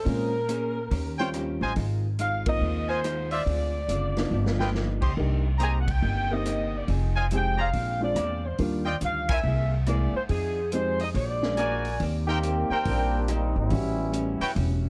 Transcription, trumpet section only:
1.18 1.29 F4 medium
1.18 1.29 C5 medium
1.18 1.29 C#5 medium
1.18 1.29 G5 medium
1.62 1.72 F4 medium
1.62 1.72 C5 medium
1.62 1.72 D#5 medium
1.62 1.72 G#5 medium
2.88 2.99 F4 medium
2.88 2.99 C5 medium
2.88 2.99 D#5 medium
2.88 2.99 G#5 medium
3.31 3.42 F4 medium
3.31 3.42 C5 medium
3.31 3.42 D5 medium
3.31 3.42 E5 medium
4.59 4.70 F4 medium
4.59 4.70 B4 medium
4.59 4.70 D#5 medium
4.59 4.70 G5 medium
5.01 5.12 G4 medium
5.01 5.12 C5 medium
5.01 5.12 D#5 medium
5.01 5.12 C6 medium
5.58 5.78 G4 medium
5.58 5.78 C5 medium
5.58 5.78 D#5 medium
5.58 5.78 A#5 medium
7.15 7.26 F4 medium
7.15 7.26 C5 medium
7.15 7.26 D#5 medium
7.15 7.26 G#5 medium
7.57 7.68 G#4 medium
7.57 7.68 C5 medium
7.57 7.68 D5 medium
7.57 7.68 A#5 medium
8.85 8.96 F4 medium
8.85 8.96 D5 medium
8.85 8.96 D#5 medium
8.85 8.96 G5 medium
9.29 9.39 E4 medium
9.29 9.39 A#4 medium
9.29 9.39 C5 medium
9.29 9.39 G#5 loud
11.57 12.00 F#4 medium
11.57 12.00 A#4 medium
11.57 12.00 D5 medium
11.57 12.00 G#5 medium
12.28 12.38 D#4 medium
12.28 12.38 A#4 medium
12.28 12.38 C5 medium
12.28 12.38 G5 loud
12.71 13.25 C4 medium
12.71 13.25 A#4 medium
12.71 13.25 C5 medium
12.71 13.25 G5 medium
14.41 14.51 F#4 medium
14.41 14.51 B4 medium
14.41 14.51 C#5 medium
14.41 14.51 G5 loud

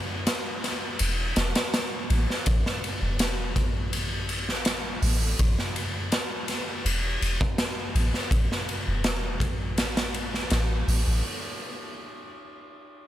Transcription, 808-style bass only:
1.00 1.32 E1 medium
1.37 1.53 E1 medium
2.10 2.26 A1 loud
2.47 2.63 A1 loud
3.02 3.58 E1 medium
3.56 4.99 A1 medium
5.02 5.34 A1 medium
5.40 5.56 A1 medium
6.85 7.17 E1 medium
7.22 7.38 E1 medium
7.95 8.12 A1 medium
8.31 8.48 A1 medium
8.88 9.42 E1 medium
9.41 10.51 A1 medium
10.51 10.83 A1 medium
10.88 11.04 A1 medium
11.07 11.22 A1 medium

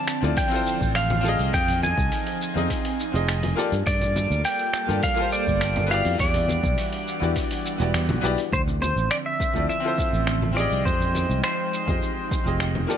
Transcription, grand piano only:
0.21 0.35 C4 medium
0.21 0.35 E4 medium
0.21 0.36 F4 medium
0.21 0.36 A4 medium
0.21 0.37 D5 medium
0.48 1.19 C4 loud
0.48 1.20 E4 medium
0.48 1.21 F4 medium
0.54 1.22 A4 loud
0.54 1.23 C5 loud
1.21 2.50 C4 loud
1.21 2.51 F4 loud
1.21 2.52 A4 medium
1.27 2.53 G#4 medium
1.27 2.54 D#5 loud
2.54 3.10 C4 medium
2.54 3.10 D#4 medium
2.54 3.10 F4 medium
2.54 3.11 G#4 medium
2.54 3.11 D#5 medium
3.12 3.53 C4 medium
3.12 3.54 D#4 medium
3.12 3.53 F4 medium
3.12 3.54 G#4 medium
3.12 3.55 D#5 medium
3.55 3.70 A#3 loud
3.55 3.71 F4 loud
3.55 3.71 G4 medium
3.55 3.71 A4 medium
3.55 3.72 D5 loud
4.87 5.01 A#3 medium
4.87 5.01 F4 medium
4.87 5.02 G4 medium
4.87 5.02 A4 medium
4.87 5.03 D5 medium
5.14 5.85 A#3 loud
5.14 5.86 F4 loud
5.14 5.87 G4 medium
5.20 5.88 A4 loud
5.20 5.89 C5 loud
5.86 7.16 B3 loud
5.86 7.17 E4 loud
5.86 7.18 F#4 medium
5.92 7.19 G4 loud
5.92 7.20 D5 loud
7.19 7.75 B3 medium
7.19 7.76 E4 medium
7.19 7.76 F#4 medium
7.19 7.77 G4 medium
7.19 7.77 D5 medium
7.78 8.19 B3 medium
7.78 8.19 E4 medium
7.78 8.20 F#4 medium
7.78 8.20 G4 medium
7.78 8.21 D5 medium
8.21 8.36 B3 loud
8.21 8.36 E4 loud
8.21 8.37 F#4 medium
8.21 8.37 G4 loud
8.21 8.38 D5 loud
9.53 9.67 C4 medium
9.53 9.67 E4 medium
9.53 9.68 F4 medium
9.53 9.68 A4 medium
9.53 9.69 D5 medium
9.80 10.51 C4 medium
9.80 10.52 E4 medium
9.80 10.53 F4 medium
9.86 10.54 A4 medium
9.86 10.55 C5 loud
10.53 11.82 C4 loud
10.53 11.83 F4 medium
10.53 11.84 G4 medium
10.58 11.85 G#4 medium
10.58 11.86 D#5 loud
11.86 12.41 C4 medium
11.86 12.42 F4 medium
11.86 12.42 G4 medium
11.86 12.43 G#4 medium
11.86 12.43 D#5 medium
12.44 12.85 C4 medium
12.44 12.85 F4 medium
12.44 12.86 G4 medium
12.44 12.86 G#4 medium
12.44 12.87 D#5 medium
12.87 12.97 A#3 loud
12.87 12.97 F4 medium
12.87 12.97 G4 medium
12.87 12.97 A4 medium
12.87 12.97 D5 loud

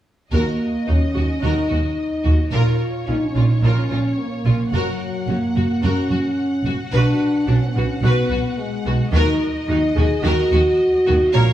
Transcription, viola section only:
0.32 0.58 F#4 soft
0.88 0.96 F#4 soft
1.14 1.22 F#4 soft
1.43 1.69 F#4 soft
1.70 1.78 F#4 soft
2.25 2.33 F#4 soft
2.53 2.79 F4 soft
3.08 3.16 F4 soft
3.36 3.44 F4 soft
3.63 3.89 F4 soft
3.91 3.99 F4 soft
4.46 4.54 F4 soft
4.73 4.99 F#4 soft
5.29 5.37 F#4 soft
5.57 5.65 F#4 soft
5.83 6.09 F#4 medium
6.10 6.18 F#4 soft
6.67 6.75 F#4 soft
6.94 7.20 F#4 medium
7.48 7.56 F#4 soft
7.76 7.84 F#4 soft
8.03 8.29 F#4 medium
8.30 8.38 F#4 soft
8.87 8.95 F#4 soft
9.13 9.39 F#4 medium
9.69 9.77 F#4 soft
9.96 10.04 F#4 medium
10.24 10.50 F#4 medium
10.52 10.60 F#4 soft
11.06 11.14 F#4 medium
11.34 11.53 A#4 medium

